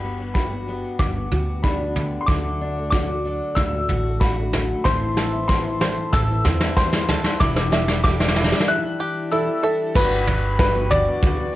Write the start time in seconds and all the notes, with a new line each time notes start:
Already playing: G1 G2 G3 B3 D4 F#4 B5
0.04 B3
0.18 B3 D4 F#4
0.34 G3 B3 D4 F#4 B5, kick, snare
0.51 B3 D4 F#4
0.67 G3 B3 D4 F#4
0.99 G1 G2 D6, kick, snare, floor tom
1.15 B3 D4 F#4
1.31 D2 G3 B3 D4 F#4, floor tom
1.63 G3 B3 D4 F#4 B5, kick, snare
1.80 B3 D4 F#4
1.96 D3 G3 B3 D4 F#4, floor tom
2.21 C6
2.26 D2 D3 F#3 A3 D4 F#4 D6, kick, snare, floor tom
2.61 D4
2.76 A3 D4 F#4
2.90 D3 F#3 A3 D4 F#4 D6, kick, snare
3.09 A3 D4 F#4
3.25 F#3 A3 D4 F#4
3.55 D2 A2 E6, kick, snare, floor tom
3.73 A3 D4 F#4
3.89 A1 F#3 A3 D4 F#4, floor tom
4.05 A3 D4 F#4
4.20 D3 F#3 A3 D4 F#4 B5, kick, snare
4.36 A3 D4 F#4
4.53 F#3 A3 D4 F#4, snare, floor tom
4.84 A1 A2 E3 C4 E4 A4 C5 E5 A5 C6, kick, snare, floor tom
5.17 A4, snare
5.33 B3 C4 E4
5.48 A2 E3 B3 C4 E4 C6, kick, snare
5.64 B3 C4 E4
5.81 E3 C4 E4 C5, snare
6.13 A1 A4 E6, kick, snare, floor tom
6.29 B3 C4 E4
6.44 E2 E3 B3 C4 E4, snare, floor tom
6.60 B3 C4 E4, snare
6.76 A2 E3 B3 C4 E4 C5 C6, kick, snare
6.92 B3 C4 E4, snare
7.07 E3 C4 E4 A4, snare, floor tom
7.24 snare
7.39 E1 E2 B2 E3 G3 D4 E4 D6, kick, snare, floor tom
7.56 snare
7.72 E5, snare
7.87 E3 G3 D4 E4, snare
8.03 E2 B2 E3 G3 D4 E4 G4 D6, kick, snare
8.19 E3 G3 D4 E4, snare
8.28 snare
8.35 E3 G3 D4 E4, snare
8.44 snare
8.52 snare
8.60 snare
8.68 E5 F#6
8.83 E3 G3 D4 E4
8.98 E3 G3 D4 E4 G4
9.31 E2 B2 E3 G3 D4 E4 A4 E6
9.46 E3 G3 D4 E4
9.62 E3 G3 D4 E4 A4 E5
9.94 G1 G3 B3 D4 F#4 B4, kick, floor tom, crash
10.26 G3 B3 D4 F#4, floor tom
10.59 B4, kick, snare
10.73 G3 B3 D4 F#4
10.89 G3 B3 D4 F#4 D5, floor tom
11.05 B3 D4 F#4
11.23 kick, floor tom
11.37 B3 D4 F#4